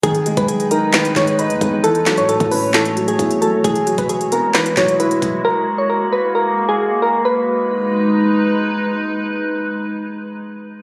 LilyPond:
<<
  \new Staff \with { instrumentName = "Synth keys" } { \time 4/4 \key gis \minor \tempo 4 = 133 gis'8. b'16 gis'8 ais'8 b'8 cis''8 b'4 | a'8. cis''16 a'8 b'8 a'8. gis'8. a'8 | gis'8. b'16 gis'8 ais'8 b'8 cis''8 b'4 | ais'8. cis''16 ais'8 b'8 ais'8. gis'8. ais'8 |
b'2. r4 | r1 | }
  \new Staff \with { instrumentName = "Ambient pad" } { \time 4/4 \key gis \minor << { <gis b'>1 | <a cis''>1 | <gis fis'>1~ | <gis fis'>1 |
<gis dis' b'>1~ | <gis dis' b'>1 | } \\ { dis'1 | fis'1 | e'1 | ais1 |
r1 | r1 | } >> }
  \new Staff \with { instrumentName = "Grand piano" } { \clef bass \time 4/4 \key gis \minor dis8 gis4 dis'8 dis8 gis8 dis''8 gis8 | e8 fis4 cis'8 e8 fis8 e'8 fis8 | e8 fis4 b8 e8 fis8 e'8 fis8 | r1 |
r1 | r1 | }
  \new Staff \with { instrumentName = "808-style bass" } { \clef bass \time 4/4 \key gis \minor gis,,8. b,,4.~ b,,16 gis,,8. dis,16 e,8~ | e,8. a,8 a,4.~ a,16 e,8. gis,,16 | e,,8. e,,4 r8. e,,4 e,,8 | r1 |
r1 | r1 | }
  \new DrumStaff \with { instrumentName = "Drums" } \drummode { \time 4/4 <hh bd>16 hh16 hh16 <hh bd>16 hh16 hh16 hh8 <hc hh sn>16 hh16 <hc hh bd sn>16 hh16 hh16 hh16 <hh bd>8 | hh16 hh16 <hc hh sn>16 hh16 hh16 <hh bd>16 hho8 <hc hh sn>16 hh16 hh16 hh16 <hh bd>16 hh16 hh8 | <hh bd>16 hh16 hh16 <hh bd>16 hh16 hh16 hh8 <hc hh sn>16 hh16 <hc hh bd sn>16 hh16 hh16 hh16 <hh bd>8 | r4 r4 r4 r4 |
r4 r4 r4 r4 | r4 r4 r4 r4 | }
>>